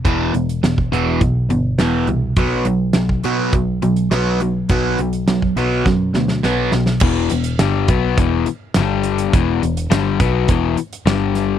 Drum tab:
CC |----------------|----------------|----------------|x---------------|
HH |x-xxx-x-x-x-x-x-|x-x-x-x-x-xxx-x-|x-xxx-x---------|--xxx-x-x-x-x-xx|
SD |----o-------o---|----o-------o---|----o---o-ooo-oo|----o-------o---|
BD |o----o--o-------|o----o--o-------|o----o--o-------|o-----o-o-------|

CC |----------------|
HH |x-xxx-x-x-xxx-x-|
SD |----o-------o-o-|
BD |o-----o-o-------|